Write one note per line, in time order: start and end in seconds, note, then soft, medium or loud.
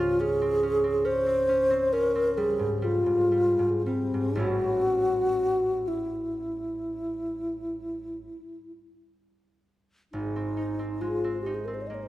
0.00 2.78 C#2 medium
0.00 2.58 G#2 medium
0.00 2.36 G3 medium
0.00 0.40 C4 medium
0.00 0.19 C#4 medium
0.00 0.22 F4 medium
0.00 3.88 F4 medium
0.20 0.62 C#4 medium
0.20 1.07 G#4 loud
0.41 0.83 C4 medium
0.63 1.03 C#4 soft
0.84 1.25 C4 medium
1.05 1.47 C#4 medium
1.05 1.94 C5 loud
1.26 1.69 C4 medium
1.49 1.92 C#4 medium
1.70 2.14 C4 medium
1.93 4.36 C#4 medium
1.93 2.39 A#4 loud
2.15 4.45 C4 medium
2.37 2.81 G3 medium
2.37 2.86 G#4 loud
2.59 3.05 G#2 soft
2.82 3.30 G3 medium
2.82 3.85 F4 loud
3.06 3.58 G#2 soft
3.32 3.85 G3 soft
3.59 4.13 G#2 soft
3.85 4.35 G3 soft
3.85 4.42 C4 medium
4.14 4.45 G#2 soft
4.35 8.25 A1 medium
4.35 8.26 G3 soft
4.35 8.27 B3 soft
4.35 8.28 C#4 soft
4.35 8.29 E4 soft
4.41 5.89 F#4 loud
5.88 8.72 E4 medium
10.13 12.08 G#1 soft
10.13 11.03 D#4 medium
10.36 10.78 C4 soft
10.57 11.45 D#4 soft
10.79 11.23 C4 soft
11.01 12.08 G#3 soft
11.01 11.41 F4 medium
11.24 11.66 C4 soft
11.42 11.56 G4 medium
11.46 12.08 D#4 soft
11.54 11.67 G#4 medium
11.65 12.08 C4 soft
11.65 11.76 A#4 medium
11.74 11.83 C5 medium
11.81 11.89 C#5 medium
11.87 12.08 A#3 soft
11.87 11.96 D#5 medium
11.94 12.04 C#5 medium
12.03 12.08 C5 medium